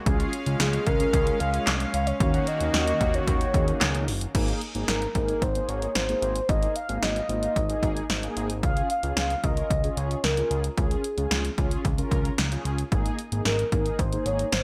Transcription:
0.06 C#2 G#3 C#4 F4 G#4 F5, kick, closed hi-hat
0.20 closed hi-hat
0.33 closed hi-hat
0.46 C#2 G#3 C#4 F4 G#4, closed hi-hat
0.60 C#2 G#4, snare, closed hi-hat
0.73 closed hi-hat
0.86 C#2 A#4, kick, closed hi-hat
1.00 G#3 C#4 F4 G#4, closed hi-hat
1.13 C#2, kick, closed hi-hat
1.27 closed hi-hat
1.40 C#2 F5, closed hi-hat
1.54 closed hi-hat
1.67 C2, snare, clap, closed hi-hat
1.80 closed hi-hat
1.94 C#2 F5, closed hi-hat
2.07 C#5, closed hi-hat
2.20 D#2 D#3 A#3 C#4 D#4 F#4, kick, closed hi-hat
2.34 closed hi-hat
2.47 D#5, closed hi-hat
2.61 D#2 A#3 C#4 D#4 F#4, closed hi-hat
2.74 D#2, snare, closed hi-hat
2.87 closed hi-hat
3.01 D#2, kick, closed hi-hat
3.14 A#3 C#4 D#4 F#4 C#5, closed hi-hat
3.27 D#2 C#5, kick, closed hi-hat
3.41 closed hi-hat
3.54 D#2 A#3 C#4 D#4 G#4, kick, closed hi-hat
3.68 closed hi-hat
3.81 C#2, snare, clap, closed hi-hat
3.95 closed hi-hat
4.08 F#1, open hi-hat
4.21 closed hi-hat
4.35 G#1 A#3 D#4 G#4, kick, closed hi-hat, crash
4.48 closed hi-hat
4.61 closed hi-hat
4.75 G#1 A#3 D#4 G#4, closed hi-hat
4.88 G#1 A#4, snare, closed hi-hat
5.02 closed hi-hat
5.15 G#1 A#3 D#4 G#4 A#4, kick, closed hi-hat
5.28 closed hi-hat
5.42 G#1 C5, kick, closed hi-hat
5.55 A#3 D#4 G#4, closed hi-hat
5.69 G#1 C#5, closed hi-hat
5.82 closed hi-hat
5.95 G#1 C5, snare, closed hi-hat
6.09 A#3 D#4 G#4, closed hi-hat
6.22 G#1, closed hi-hat
6.36 closed hi-hat
6.49 G#1 A#3 D#4 G#4 D#5, kick, closed hi-hat
6.63 closed hi-hat
6.76 F5, closed hi-hat
6.89 G#1 A#3 D#4 G#4, closed hi-hat
7.02 G#1 D#5, snare, closed hi-hat
7.16 closed hi-hat
7.29 G#1 A#3 D#4 F4, closed hi-hat
7.43 closed hi-hat
7.56 G#1, kick, closed hi-hat
7.70 A#3 D#4 G#4, closed hi-hat
7.83 G#1, kick, closed hi-hat
7.97 closed hi-hat
8.10 G#1, snare, closed hi-hat
8.23 A#3 D#4 G#4, closed hi-hat
8.36 G#1, closed hi-hat
8.50 closed hi-hat
8.63 C#2 C#4 F4 G#4 F5, kick, closed hi-hat
8.77 closed hi-hat
8.90 F5, closed hi-hat
9.03 C#2 C#4 F4 G#4, closed hi-hat
9.17 C#2 F5, snare, closed hi-hat
9.30 closed hi-hat
9.43 C#2 C#4 F4 A#4 D#5, kick, closed hi-hat
9.57 closed hi-hat
9.70 C#2, kick, closed hi-hat
9.84 C#4 F4 G#4, closed hi-hat
9.97 C#2 C#5, closed hi-hat
10.11 closed hi-hat
10.24 C#2 A#4, snare, closed hi-hat
10.37 C#4 F4 G#4, closed hi-hat
10.51 C#2, closed hi-hat
10.64 closed hi-hat
10.77 C#2 C#4 F4 G#4, kick, closed hi-hat
10.91 closed hi-hat
11.04 closed hi-hat
11.18 C#2 C#4 F4 G#4, closed hi-hat
11.31 C#2, snare, closed hi-hat
11.45 closed hi-hat
11.58 C#2 C#4 F4 G#4, kick, closed hi-hat
11.71 closed hi-hat
11.85 C#2, kick, closed hi-hat
11.98 C#4 F4 A#4, closed hi-hat
12.11 C#2, kick, closed hi-hat
12.25 closed hi-hat
12.38 C#2, snare, closed hi-hat
12.52 C#4 F4 G#4, closed hi-hat
12.65 C#2, closed hi-hat
12.78 closed hi-hat
12.92 G#1 A#3 D#4 G#4, kick, closed hi-hat
13.06 closed hi-hat
13.19 closed hi-hat
13.32 G#1 A#3 D#4 G#4, closed hi-hat
13.45 G#1 A#4, snare, closed hi-hat
13.59 closed hi-hat
13.72 G#1 A#3 D#4 G#4 A#4, kick, closed hi-hat
13.86 closed hi-hat
13.99 G#1 C5, kick, closed hi-hat
14.13 A#3 D#4 G#4, closed hi-hat
14.26 G#1 C#5, closed hi-hat
14.39 closed hi-hat
14.52 G#1 C5, snare, closed hi-hat

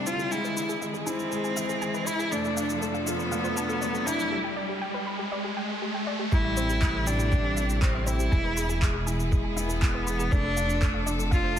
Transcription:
Already playing: C3 G3 A3 C4 E4 A4, riser
0.06 E4 F4 C5, shaker
0.19 G4, shaker
0.31 E3 G#3 E4 G#4 G#5, shaker
0.44 B4, shaker
0.57 E4 B5, shaker
0.69 G#4, shaker
0.82 G#3 E5, shaker
0.94 G#4, shaker
1.06 C4 E4 G#5, shaker
1.19 shaker
1.31 G#3 G#4, shaker
1.44 G#5, shaker
1.57 G#4 E5, shaker
1.69 G#4, shaker
1.82 G#3 G#5, shaker
1.94 B4, shaker
2.07 E4 B5, shaker
2.19 G#4, shaker
2.32 F2 C3 F3 A3 D4 A4 D5, shaker
2.44 A4, shaker
2.57 D4 F5, shaker
2.69 shaker
2.82 A3 A4, shaker
2.94 F5, shaker
3.07 B3 F4 D5, shaker
3.19 A4, shaker
3.32 A3 F5, shaker
3.44 C5, shaker
3.57 D4 A5, shaker
3.69 A4, shaker
3.81 A3 D5, shaker
3.94 A4, shaker
4.06 D4 E4 F5, shaker
4.20 shaker
4.32 G4
4.44 G5
4.56 D5
4.69 G4
4.81 G5
4.94 B4
5.07 B5
5.19 G4
5.32 D5
5.44 G4
5.57 G5
5.82 G4
5.95 G5
6.07 D5
6.19 G4
6.32 A1 C3 G3 A3 E4 G4, kick, shaker
6.44 E5
6.57 C4 C5, shaker
6.70 G4, shaker
6.82 E5, kick, clap, shaker
6.95 A4
7.07 D4 E4 G5, shaker
7.19 G4, shaker
7.32 G3 C5, kick, shaker
7.44 G4
7.57 C4 E5, shaker
7.70 shaker
7.82 G3 C4 G4, kick, clap, shaker
7.94 E5
8.06 C4 E4 C5, shaker
8.19 G4, shaker
8.32 E1 B2 E3 G#3 E4 G#4 G#5, kick, shaker
8.44 B4
8.57 G#4 B5, shaker
8.69 G#4, shaker
8.82 G#3 E5, kick, clap, shaker
8.94 G#4
9.07 E4 G#5, shaker
9.20 shaker
9.32 G#3 G#4, kick, shaker
9.44 G#5
9.56 B3 E4 E5, shaker
9.69 G#4, shaker
9.82 G#3 G#5, kick, clap, shaker
9.95 B4
10.07 G#4 B5, shaker
10.19 G#4, shaker
10.32 F1 C3 F3 A3 D4 A4 D5, kick, shaker
10.44 A4
10.56 D4 F5, shaker
10.70 shaker
10.81 A3 A4, kick, clap, shaker
10.94 F5
11.06 D4 D5, shaker
11.19 A4, shaker
11.31 A3 F4 F5, kick, shaker
11.44 C5

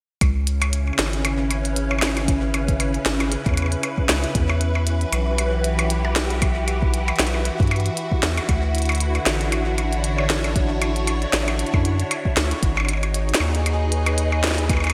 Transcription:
0.21 C#2 C#3, kick, closed hi-hat, percussion blips
0.26 C#4
0.47 closed hi-hat
0.62 E4, closed hi-hat, percussion blips
0.73 closed hi-hat
0.82 B4
0.87 percussion blips
0.93 percussion blips
0.99 G#1, snare, closed hi-hat, percussion blips
1.06 percussion blips
1.13 closed hi-hat
1.25 closed hi-hat, percussion blips
1.51 closed hi-hat, percussion blips
1.65 closed hi-hat
1.76 closed hi-hat
1.91 percussion blips
1.99 snare, closed hi-hat, percussion blips
2.07 percussion blips
2.17 closed hi-hat, percussion blips
2.28 kick, closed hi-hat
2.54 closed hi-hat, percussion blips
2.68 kick, closed hi-hat
2.80 closed hi-hat, percussion blips
2.94 closed hi-hat
3.06 G#1, snare, closed hi-hat
3.20 closed hi-hat, percussion blips
3.32 closed hi-hat
3.46 E2, kick, closed hi-hat, percussion blips
3.49 percussion blips
3.54 closed hi-hat, percussion blips
3.57 percussion blips
3.62 percussion blips
3.66 percussion blips
3.72 closed hi-hat
3.83 closed hi-hat, percussion blips
3.98 kick
4.09 C#2, snare, closed hi-hat, percussion blips
4.24 closed hi-hat
4.35 E2 E3, kick, closed hi-hat
4.49 percussion blips
4.61 closed hi-hat
4.73 F#4, percussion blips
4.87 closed hi-hat
5.00 G4, closed hi-hat
5.13 B1, closed hi-hat, percussion blips
5.38 closed hi-hat, percussion blips
5.64 closed hi-hat
5.79 closed hi-hat, percussion blips
5.90 closed hi-hat
6.05 percussion blips
6.16 snare, closed hi-hat
6.30 closed hi-hat
6.42 kick, closed hi-hat, percussion blips
6.68 closed hi-hat, percussion blips
6.82 kick
6.94 closed hi-hat
7.08 closed hi-hat, percussion blips
7.16 B1, snare, closed hi-hat
7.20 closed hi-hat
7.24 closed hi-hat
7.27 closed hi-hat
7.34 percussion blips
7.45 closed hi-hat
7.60 G2, kick, closed hi-hat
7.63 closed hi-hat
7.67 closed hi-hat
7.71 closed hi-hat, percussion blips
7.76 closed hi-hat
7.80 closed hi-hat
7.86 closed hi-hat
7.97 closed hi-hat
8.12 kick
8.23 E2, snare, closed hi-hat
8.37 closed hi-hat, percussion blips
8.49 D2 D3, kick, closed hi-hat, percussion blips
8.69 D4
8.75 closed hi-hat
8.78 closed hi-hat
8.82 closed hi-hat
8.86 closed hi-hat
8.89 closed hi-hat, percussion blips
8.92 closed hi-hat
8.95 closed hi-hat
8.98 closed hi-hat
9.00 closed hi-hat
9.15 closed hi-hat, percussion blips
9.25 A1 C#5, snare, closed hi-hat
9.41 closed hi-hat
9.52 closed hi-hat, percussion blips
9.78 closed hi-hat, percussion blips
9.93 closed hi-hat
10.04 closed hi-hat
10.18 percussion blips
10.30 snare, closed hi-hat
10.44 closed hi-hat, percussion blips
10.56 kick, closed hi-hat
10.82 closed hi-hat, percussion blips
10.96 closed hi-hat
11.07 closed hi-hat, percussion blips
11.22 closed hi-hat
11.33 A1, snare, closed hi-hat
11.48 closed hi-hat, percussion blips
11.59 closed hi-hat
11.66 closed hi-hat
11.74 F#2, kick, percussion blips
11.85 closed hi-hat
12.00 closed hi-hat
12.11 closed hi-hat, percussion blips
12.25 kick
12.37 D2, snare, closed hi-hat, percussion blips
12.51 closed hi-hat
12.63 G#1 D#4, kick, closed hi-hat
12.77 percussion blips
12.80 G#4, percussion blips
12.85 closed hi-hat, percussion blips
12.89 percussion blips
12.93 percussion blips
12.97 percussion blips
13.03 closed hi-hat, percussion blips
13.14 closed hi-hat
13.29 B4, closed hi-hat
13.35 snare, closed hi-hat
13.40 D#2, percussion blips
13.55 closed hi-hat
13.66 closed hi-hat, percussion blips
13.92 closed hi-hat
14.06 closed hi-hat, percussion blips
14.18 closed hi-hat
14.32 percussion blips
14.44 snare, closed hi-hat
14.47 snare
14.51 snare
14.55 snare, closed hi-hat
14.70 kick, closed hi-hat, percussion blips
14.73 percussion blips
14.77 percussion blips
14.80 closed hi-hat, percussion blips
14.84 percussion blips
14.87 closed hi-hat, percussion blips
14.90 percussion blips

